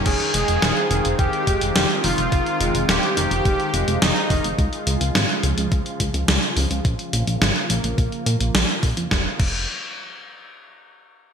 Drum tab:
CC |x---------------|----------------|----------------|----------------|
HH |xxxxxxxxxxxxxxox|xxxxxxxxxxxxxxox|xxxxxxxxxxxxxxox|xxxxxxxxxxxxxxox|
SD |----o-------o---|----o-------o---|----o-------o---|----o-------o---|
BD |o-------o-o-----|o-------o-----o-|o-------o-o-----|o-------o-----o-|

CC |--x-------------|
HH |----------------|
SD |o---------------|
BD |o-o-------------|